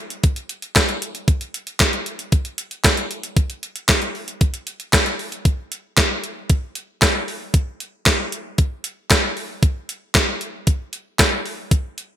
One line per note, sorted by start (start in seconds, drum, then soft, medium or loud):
0.10 closed hi-hat medium
0.23 kick loud
0.23 closed hi-hat medium
0.36 closed hi-hat medium
0.49 closed hi-hat medium
0.62 closed hi-hat medium
0.76 kick loud
0.76 snare loud
0.76 clap loud
0.76 closed hi-hat medium
0.89 closed hi-hat medium
1.02 closed hi-hat medium
1.15 closed hi-hat medium
1.28 kick loud
1.28 closed hi-hat medium
1.41 closed hi-hat medium
1.54 closed hi-hat medium
1.67 closed hi-hat medium
1.80 kick loud
1.80 snare loud
1.80 clap loud
1.80 closed hi-hat medium
1.93 closed hi-hat medium
2.06 closed hi-hat medium
2.19 closed hi-hat medium
2.32 kick loud
2.32 closed hi-hat medium
2.45 closed hi-hat medium
2.58 closed hi-hat medium
2.71 closed hi-hat medium
2.84 kick loud
2.84 snare loud
2.84 clap medium
2.84 closed hi-hat medium
2.97 closed hi-hat medium
3.11 closed hi-hat medium
3.23 closed hi-hat medium
3.37 kick loud
3.37 closed hi-hat medium
3.50 closed hi-hat medium
3.63 closed hi-hat medium
3.76 closed hi-hat medium
3.89 kick loud
3.89 snare loud
3.89 clap loud
3.89 closed hi-hat medium
4.02 closed hi-hat medium
4.15 open hi-hat medium
4.28 closed hi-hat medium
4.41 kick loud
4.41 closed hi-hat medium
4.54 closed hi-hat medium
4.67 closed hi-hat medium
4.80 closed hi-hat medium
4.93 kick loud
4.93 snare loud
4.93 clap loud
4.93 closed hi-hat medium
5.06 closed hi-hat medium
5.19 open hi-hat medium
5.32 closed hi-hat medium
5.45 kick loud
5.45 closed hi-hat medium
5.72 closed hi-hat medium
5.97 kick loud
5.97 snare loud
5.97 clap medium
5.97 closed hi-hat medium
6.24 closed hi-hat medium
6.50 kick loud
6.50 closed hi-hat medium
6.75 closed hi-hat medium
7.02 kick loud
7.02 snare loud
7.02 clap medium
7.02 closed hi-hat medium
7.28 open hi-hat medium
7.54 kick loud
7.54 closed hi-hat medium
7.80 closed hi-hat medium
8.06 kick loud
8.06 snare loud
8.06 clap medium
8.06 closed hi-hat medium
8.32 closed hi-hat medium
8.58 kick loud
8.58 closed hi-hat medium
8.84 closed hi-hat medium
9.10 kick loud
9.10 snare loud
9.10 clap medium
9.10 closed hi-hat medium
9.37 open hi-hat medium
9.63 kick loud
9.63 closed hi-hat medium
9.89 closed hi-hat medium
10.15 kick loud
10.15 snare loud
10.15 clap medium
10.15 closed hi-hat medium
10.41 closed hi-hat medium
10.67 kick loud
10.67 closed hi-hat medium
10.93 closed hi-hat medium
11.19 kick loud
11.19 snare loud
11.19 clap medium
11.19 closed hi-hat medium
11.46 open hi-hat medium
11.71 kick loud
11.71 closed hi-hat medium
11.98 closed hi-hat medium